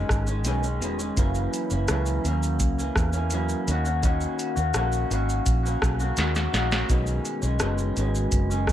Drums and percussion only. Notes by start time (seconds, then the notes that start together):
0.09 kick, cross-stick, closed hi-hat, shaker
0.27 shaker
0.45 closed hi-hat, shaker
0.64 shaker
0.82 closed hi-hat, shaker
1.00 shaker
1.17 kick, closed hi-hat, shaker
1.35 shaker
1.54 closed hi-hat, shaker
1.70 shaker
1.88 cross-stick, closed hi-hat, shaker
2.06 shaker
2.25 closed hi-hat, shaker
2.43 shaker
2.60 kick, closed hi-hat, shaker
2.79 shaker
2.96 kick, cross-stick, closed hi-hat, shaker
3.13 shaker
3.30 closed hi-hat, shaker
3.49 shaker
3.68 closed hi-hat, shaker
3.85 shaker
4.03 kick, closed hi-hat, shaker
4.21 shaker
4.39 closed hi-hat, shaker
4.57 shaker
4.74 cross-stick, closed hi-hat, shaker
4.92 shaker
5.11 closed hi-hat, shaker
5.29 shaker
5.46 kick, closed hi-hat, shaker
5.66 shaker
5.82 kick, cross-stick, closed hi-hat, shaker
6.00 shaker
6.17 snare, closed hi-hat, shaker
6.35 snare, shaker
6.54 snare, closed hi-hat, shaker
6.72 snare, shaker
6.90 kick, closed hi-hat, shaker
7.07 shaker
7.25 closed hi-hat, shaker
7.42 shaker
7.60 cross-stick, closed hi-hat, shaker
7.78 shaker
7.97 closed hi-hat, shaker
8.15 shaker
8.32 kick, closed hi-hat, shaker
8.51 shaker
8.67 kick, cross-stick, closed hi-hat, shaker